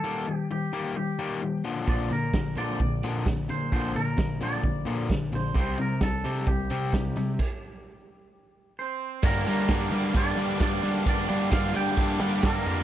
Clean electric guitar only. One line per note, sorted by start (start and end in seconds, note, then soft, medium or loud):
0.00 0.35 A4 loud
0.35 0.51 G4 loud
0.52 0.95 G4 medium
0.97 1.61 G4 medium
1.89 2.12 D5 medium
2.13 2.58 A#4 medium
2.58 3.45 D5 loud
3.50 3.72 C5 medium
3.73 3.96 C5 loud
3.96 4.38 A#4 medium
4.43 5.35 D5 loud
5.35 5.58 C5 medium
5.60 5.81 C5 medium
5.81 6.03 A#4 medium
6.03 6.50 A4 medium
6.48 8.74 G4 medium
8.79 9.25 C5 medium
9.26 9.46 A#4 loud
9.47 10.11 A#4 medium
10.17 10.62 D5 loud
10.63 11.08 D5 loud
11.09 11.53 D5 medium
11.53 11.74 F5 loud
11.76 12.47 G5 loud
12.46 12.83 A#4 medium